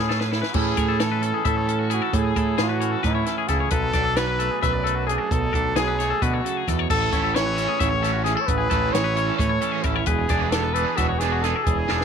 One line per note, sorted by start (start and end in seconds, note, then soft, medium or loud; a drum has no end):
0.00 0.41 A2 medium
0.00 0.52 A2 medium
0.00 0.52 C#4 medium
0.00 0.30 E4 soft
0.08 0.52 G#4 medium
0.08 0.20 A4 medium
0.08 snare medium
0.20 0.32 B4 medium
0.20 snare medium
0.31 0.52 E4 soft
0.31 0.58 E4 medium
0.31 0.41 A4 medium
0.31 snare medium
0.42 0.54 B4 medium
0.42 snare medium
0.54 1.43 A2 medium
0.54 0.73 A2 loud
0.54 0.99 E3 medium
0.54 1.21 C#4 medium
0.54 0.77 E4 medium
0.54 1.01 G#4 medium
0.54 0.77 A4 medium
0.54 kick loud
0.54 crash medium
0.77 1.31 A2 medium
0.77 1.89 E4 medium
0.77 0.88 C#5 medium
0.77 kick medium
0.77 closed hi-hat medium
0.89 1.00 A4 medium
0.99 2.58 E3 medium
0.99 1.46 A4 loud
0.99 1.11 C#5 medium
0.99 snare loud
0.99 closed hi-hat medium
1.11 1.22 B4 medium
1.21 1.67 C#4 medium
1.21 1.34 A4 medium
1.21 closed hi-hat medium
1.34 1.46 G#4 medium
1.45 2.11 A2 medium
1.45 1.99 A2 medium
1.45 1.89 A4 medium
1.45 1.56 E5 medium
1.45 kick loud
1.45 closed hi-hat medium
1.56 1.67 C#5 medium
1.67 2.11 C#4 medium
1.67 1.79 A4 medium
1.67 closed hi-hat medium
1.79 1.90 F#4 medium
1.90 2.11 E4 medium
1.90 2.18 F#4 medium
1.90 2.02 G#4 medium
1.90 closed hi-hat medium
2.02 2.24 A4 medium
2.13 3.02 A2 medium
2.13 2.32 A2 medium
2.13 2.61 G#4 loud
2.13 kick loud
2.13 closed hi-hat medium
2.24 2.36 G#4 medium
2.36 2.55 A2 medium
2.36 3.48 E4 medium
2.36 2.57 A4 medium
2.36 kick medium
2.36 closed hi-hat medium
2.58 2.95 A2 loud
2.58 3.72 E3 medium
2.58 2.69 G#4 medium
2.58 snare loud
2.58 closed hi-hat medium
2.62 3.03 F#4 loud
2.69 2.80 B4 medium
2.81 3.26 C#4 medium
2.81 2.91 C#5 medium
2.81 closed hi-hat medium
2.91 3.03 A4 medium
3.03 3.69 A2 medium
3.03 3.22 A2 medium
3.03 3.50 E4 medium
3.03 3.14 B4 medium
3.03 kick medium
3.03 snare soft
3.03 closed hi-hat medium
3.15 3.26 C#5 medium
3.26 3.70 C#4 medium
3.26 3.38 A4 medium
3.26 snare soft
3.26 closed hi-hat medium
3.38 3.48 G#4 medium
3.48 3.68 C#2 medium
3.48 3.70 E4 medium
3.48 3.73 G#4 medium
3.48 3.60 A4 medium
3.48 kick medium
3.48 snare soft
3.48 closed hi-hat medium
3.60 3.71 C#5 medium
3.71 3.90 B1 loud
3.71 4.63 B2 medium
3.71 4.18 A4 loud
3.71 3.93 B4 medium
3.71 kick loud
3.71 closed hi-hat medium
3.93 4.48 B1 medium
3.93 5.08 D4 medium
3.93 4.05 D5 medium
3.93 kick medium
3.93 snare soft
3.93 closed hi-hat medium
4.05 4.17 A4 medium
4.16 5.28 F#3 medium
4.16 4.61 B4 loud
4.16 4.27 C#5 medium
4.16 snare loud
4.16 closed hi-hat loud
4.27 4.40 B4 medium
4.39 4.85 A3 medium
4.39 4.51 A4 medium
4.39 closed hi-hat medium
4.51 4.63 G#4 medium
4.62 5.17 B1 medium
4.62 5.31 F#2 medium
4.62 5.10 B4 medium
4.62 4.73 E5 medium
4.62 kick medium
4.62 snare soft
4.62 closed hi-hat medium
4.73 4.85 D5 medium
4.84 6.00 A3 medium
4.84 4.95 A4 medium
4.84 closed hi-hat medium
4.95 5.06 F#4 medium
5.07 5.29 D4 medium
5.07 5.18 G#4 medium
5.07 5.33 G#4 medium
5.07 closed hi-hat medium
5.18 5.41 A4 medium
5.31 5.49 B1 medium
5.31 6.22 B2 medium
5.31 5.79 A4 loud
5.31 kick loud
5.31 closed hi-hat medium
5.41 5.53 G#4 medium
5.53 5.72 B1 medium
5.53 6.88 D4 medium
5.53 5.75 A4 medium
5.53 kick medium
5.53 closed hi-hat medium
5.75 6.12 B1 medium
5.75 6.88 F#3 medium
5.75 5.88 G#4 medium
5.75 6.24 G#4 loud
5.75 snare loud
5.75 closed hi-hat medium
5.88 5.98 B4 medium
5.99 7.58 A3 medium
5.99 6.10 C#5 medium
5.99 snare soft
5.99 closed hi-hat medium
6.10 6.22 A4 medium
6.22 6.40 B2 medium
6.22 6.44 D3 medium
6.22 6.68 F#4 medium
6.22 6.33 B4 medium
6.22 kick medium
6.22 closed hi-hat medium
6.33 6.45 C#5 medium
6.45 6.67 C#3 medium
6.45 6.57 A4 medium
6.45 closed hi-hat medium
6.57 6.68 G#4 medium
6.68 6.86 E2 medium
6.68 6.90 B2 medium
6.68 6.79 A4 medium
6.68 kick medium
6.68 snare soft
6.68 closed hi-hat medium
6.79 6.90 C#5 medium
6.90 7.08 A1 loud
6.90 7.80 A2 medium
6.90 7.12 A4 medium
6.90 7.37 A4 loud
6.90 kick loud
6.90 crash medium
7.11 7.66 A1 medium
7.11 7.42 E3 medium
7.11 7.42 A3 medium
7.11 7.42 C#4 medium
7.11 7.41 E4 medium
7.11 8.25 E4 medium
7.11 7.23 C#5 medium
7.11 kick medium
7.11 snare soft
7.11 closed hi-hat medium
7.24 7.34 A4 medium
7.34 8.92 E3 medium
7.34 7.46 C#5 medium
7.34 7.80 C#5 loud
7.34 snare loud
7.34 closed hi-hat loud
7.46 7.57 B4 medium
7.56 7.87 E3 medium
7.56 7.87 A3 medium
7.56 7.87 C#4 medium
7.56 8.04 C#4 medium
7.56 7.87 E4 medium
7.56 7.69 A4 medium
7.56 closed hi-hat medium
7.68 7.80 G#4 medium
7.79 8.34 A1 medium
7.79 8.46 A2 medium
7.79 8.23 C#5 loud
7.79 7.90 E5 medium
7.79 kick loud
7.79 snare soft
7.79 closed hi-hat medium
7.91 8.03 C#5 medium
8.02 8.33 E3 medium
8.02 8.33 A3 medium
8.02 8.33 C#4 medium
8.02 8.24 C#4 medium
8.02 8.33 E4 medium
8.02 8.13 A4 medium
8.02 snare soft
8.02 closed hi-hat medium
8.13 8.24 F#4 medium
8.24 8.37 C#4 medium
8.24 8.35 G#4 medium
8.24 8.43 G#4 medium
8.24 snare soft
8.24 closed hi-hat medium
8.35 8.48 E4 soft
8.35 8.57 A4 medium
8.41 8.48 C#5 medium
8.47 8.66 A1 medium
8.47 9.38 A2 medium
8.47 8.95 B4 loud
8.47 kick loud
8.47 closed hi-hat loud
8.58 8.69 G#4 medium
8.70 8.89 A1 medium
8.70 9.01 E3 medium
8.70 9.01 A3 medium
8.70 9.01 C#4 medium
8.70 9.01 E4 medium
8.70 10.31 E4 medium
8.70 8.93 A4 medium
8.70 kick medium
8.70 snare soft
8.70 closed hi-hat medium
8.93 9.30 A1 loud
8.93 10.06 E3 medium
8.93 9.05 G#4 medium
8.93 9.37 C#5 loud
8.93 snare loud
8.93 closed hi-hat loud
9.04 9.16 B4 medium
9.16 9.47 E3 medium
9.16 9.47 A3 medium
9.16 9.61 C#4 medium
9.16 9.46 C#4 medium
9.16 9.46 E4 medium
9.16 9.27 C#5 medium
9.16 closed hi-hat medium
9.27 9.38 A4 medium
9.38 10.05 A2 medium
9.38 9.57 A2 loud
9.38 9.49 B4 medium
9.38 9.85 C#5 loud
9.38 kick loud
9.38 closed hi-hat loud
9.49 9.61 C#5 medium
9.61 9.92 E3 medium
9.61 9.92 A3 medium
9.61 9.83 C#4 medium
9.61 9.92 C#4 medium
9.61 9.92 E4 medium
9.61 9.72 A4 medium
9.61 closed hi-hat medium
9.72 9.84 G#4 medium
9.83 10.03 A1 medium
9.83 10.05 C#4 medium
9.83 10.09 E4 medium
9.83 9.96 A4 medium
9.83 kick medium
9.83 closed hi-hat medium
9.96 10.06 C#5 medium
10.06 10.25 E1 loud
10.06 11.67 E3 medium
10.06 10.52 G#4 medium
10.06 10.29 B4 medium
10.06 kick loud
10.06 closed hi-hat medium
10.29 10.84 E1 medium
10.29 10.60 E3 medium
10.29 10.60 B3 medium
10.29 10.60 D4 medium
10.29 10.77 D4 medium
10.29 10.59 G#4 medium
10.29 10.41 D5 medium
10.29 kick medium
10.29 snare soft
10.29 closed hi-hat medium
10.41 10.52 B4 medium
10.51 11.64 B3 medium
10.51 10.75 A4 loud
10.51 10.64 C#5 medium
10.51 snare loud
10.51 closed hi-hat medium
10.64 10.76 B4 medium
10.74 11.06 E3 medium
10.74 11.05 B3 medium
10.74 11.05 D4 medium
10.74 11.20 D4 medium
10.74 11.05 G#4 medium
10.74 10.86 A4 medium
10.74 10.98 B4 medium
10.74 closed hi-hat medium
10.86 10.98 G#4 medium
10.97 11.52 E1 loud
10.97 11.67 B2 medium
10.97 11.21 F#4 medium
10.97 11.09 E5 medium
10.97 kick loud
10.97 snare soft
10.97 closed hi-hat medium
11.09 11.21 C#5 medium
11.19 11.51 E3 medium
11.19 11.51 B3 medium
11.19 11.51 D4 medium
11.19 11.64 D4 medium
11.19 11.43 G#4 medium
11.19 11.51 G#4 loud
11.19 11.33 B4 medium
11.19 snare soft
11.19 closed hi-hat medium
11.32 11.44 F#4 medium
11.42 11.56 G#4 medium
11.42 11.93 G#4 medium
11.42 11.66 A4 medium
11.42 snare soft
11.42 closed hi-hat medium
11.56 11.78 A4 medium
11.64 11.85 E1 loud
11.64 12.04 E3 medium
11.64 12.04 G#4 medium
11.64 kick loud
11.64 closed hi-hat medium
11.78 11.90 G#4 medium
11.88 12.04 E1 medium
11.88 12.04 E3 medium
11.88 12.04 B3 medium
11.88 12.04 D4 medium
11.88 12.04 G#4 medium
11.88 12.04 A4 medium
11.88 snare medium
12.01 snare medium